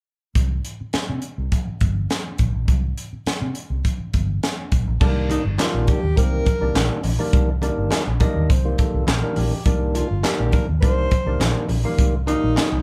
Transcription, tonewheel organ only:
5.01 5.08 D3 medium
5.01 5.42 G3 medium
5.01 5.43 A#3 medium
5.01 5.43 D4 loud
5.07 5.45 D#3 medium
5.58 6.00 D#3 medium
5.58 6.00 G3 medium
5.58 6.00 A#3 medium
5.58 5.66 C#4 medium
5.66 6.04 D4 medium
6.16 6.47 D#3 medium
6.16 6.47 G3 medium
6.16 6.48 A#3 medium
6.16 6.48 C4 medium
6.61 7.01 D#3 medium
6.61 7.02 G3 medium
6.61 7.02 A#3 medium
6.61 7.02 D4 medium
7.19 7.50 D#3 loud
7.19 7.50 G3 medium
7.19 7.50 A#3 medium
7.19 7.50 D4 loud
7.62 8.04 D#3 loud
7.62 8.04 G3 medium
7.62 8.04 A#3 medium
7.62 8.04 D4 medium
8.20 8.51 D#3 medium
8.20 8.51 G3 medium
8.20 8.51 A#3 medium
8.20 8.52 D4 loud
8.20 8.48 D#5 medium
8.50 8.77 C5 medium
8.65 9.05 D#3 medium
8.65 9.05 G3 medium
8.65 9.05 A#3 medium
8.65 9.05 F4 loud
8.79 9.06 A4 medium
9.08 9.35 A#4 medium
9.23 9.54 D#3 loud
9.23 9.54 G3 medium
9.23 9.54 A#3 loud
9.23 9.54 D4 loud
9.37 9.64 G4 medium
9.66 10.07 D#3 loud
9.66 10.07 G3 medium
9.66 10.08 A#3 medium
9.66 10.08 D4 loud
10.24 10.66 D#3 medium
10.24 10.66 G3 medium
10.24 10.66 A#3 medium
10.24 10.66 D4 medium
10.82 11.13 D#3 medium
10.82 11.13 G3 medium
10.82 11.13 A#3 medium
10.82 11.13 D4 medium
11.26 11.67 D#3 medium
11.26 11.67 G3 medium
11.26 11.67 A#3 medium
11.26 11.67 D4 medium
11.84 12.15 D#3 loud
11.84 12.15 G3 medium
11.84 12.15 A#3 medium
11.84 12.16 F4 loud
12.27 12.69 D#3 medium
12.27 12.69 G3 medium
12.27 12.69 A#3 medium
12.27 12.69 F4 medium

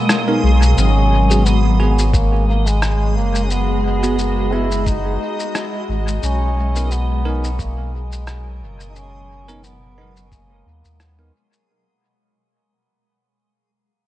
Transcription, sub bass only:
0.43 0.74 B1 medium
0.77 3.17 G#1 loud
3.16 5.17 F#1 loud
5.89 6.19 G#1 medium
6.23 8.63 B1 loud
8.62 10.63 F#1 medium
10.66 10.83 D#2 loud
10.85 11.31 D#2 loud

